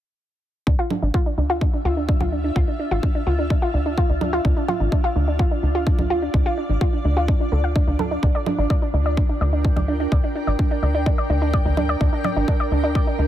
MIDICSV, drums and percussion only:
0, 0, Header, 1, 2, 480
1, 0, Start_track
1, 0, Key_signature, -1, "minor"
1, 0, Tempo, 472441
1, 680, Time_signature, 4, 2, 24, 8
1, 13486, End_track
2, 0, Start_track
2, 0, Title_t, "Drums"
2, 680, Note_on_c, 9, 36, 114
2, 781, Note_off_c, 9, 36, 0
2, 919, Note_on_c, 9, 64, 77
2, 1021, Note_off_c, 9, 64, 0
2, 1160, Note_on_c, 9, 36, 117
2, 1261, Note_off_c, 9, 36, 0
2, 1640, Note_on_c, 9, 36, 112
2, 1741, Note_off_c, 9, 36, 0
2, 2120, Note_on_c, 9, 36, 108
2, 2221, Note_off_c, 9, 36, 0
2, 2241, Note_on_c, 9, 64, 71
2, 2342, Note_off_c, 9, 64, 0
2, 2600, Note_on_c, 9, 36, 110
2, 2701, Note_off_c, 9, 36, 0
2, 3080, Note_on_c, 9, 36, 113
2, 3181, Note_off_c, 9, 36, 0
2, 3559, Note_on_c, 9, 36, 112
2, 3661, Note_off_c, 9, 36, 0
2, 4040, Note_on_c, 9, 36, 106
2, 4141, Note_off_c, 9, 36, 0
2, 4280, Note_on_c, 9, 64, 72
2, 4381, Note_off_c, 9, 64, 0
2, 4520, Note_on_c, 9, 36, 110
2, 4621, Note_off_c, 9, 36, 0
2, 4761, Note_on_c, 9, 64, 74
2, 4862, Note_off_c, 9, 64, 0
2, 5000, Note_on_c, 9, 36, 120
2, 5102, Note_off_c, 9, 36, 0
2, 5480, Note_on_c, 9, 36, 118
2, 5581, Note_off_c, 9, 36, 0
2, 5960, Note_on_c, 9, 36, 117
2, 6062, Note_off_c, 9, 36, 0
2, 6082, Note_on_c, 9, 64, 71
2, 6183, Note_off_c, 9, 64, 0
2, 6441, Note_on_c, 9, 36, 115
2, 6542, Note_off_c, 9, 36, 0
2, 6921, Note_on_c, 9, 36, 122
2, 7022, Note_off_c, 9, 36, 0
2, 7401, Note_on_c, 9, 36, 120
2, 7502, Note_off_c, 9, 36, 0
2, 7881, Note_on_c, 9, 36, 113
2, 7982, Note_off_c, 9, 36, 0
2, 8120, Note_on_c, 9, 64, 80
2, 8222, Note_off_c, 9, 64, 0
2, 8361, Note_on_c, 9, 36, 112
2, 8462, Note_off_c, 9, 36, 0
2, 8600, Note_on_c, 9, 64, 84
2, 8701, Note_off_c, 9, 64, 0
2, 8841, Note_on_c, 9, 36, 118
2, 8942, Note_off_c, 9, 36, 0
2, 9321, Note_on_c, 9, 36, 115
2, 9422, Note_off_c, 9, 36, 0
2, 9800, Note_on_c, 9, 36, 102
2, 9902, Note_off_c, 9, 36, 0
2, 9922, Note_on_c, 9, 64, 79
2, 10024, Note_off_c, 9, 64, 0
2, 10280, Note_on_c, 9, 36, 108
2, 10382, Note_off_c, 9, 36, 0
2, 10760, Note_on_c, 9, 36, 106
2, 10862, Note_off_c, 9, 36, 0
2, 11240, Note_on_c, 9, 36, 108
2, 11342, Note_off_c, 9, 36, 0
2, 11720, Note_on_c, 9, 36, 101
2, 11822, Note_off_c, 9, 36, 0
2, 11961, Note_on_c, 9, 64, 77
2, 12063, Note_off_c, 9, 64, 0
2, 12200, Note_on_c, 9, 36, 110
2, 12302, Note_off_c, 9, 36, 0
2, 12440, Note_on_c, 9, 64, 84
2, 12542, Note_off_c, 9, 64, 0
2, 12680, Note_on_c, 9, 36, 112
2, 12781, Note_off_c, 9, 36, 0
2, 13159, Note_on_c, 9, 36, 112
2, 13261, Note_off_c, 9, 36, 0
2, 13486, End_track
0, 0, End_of_file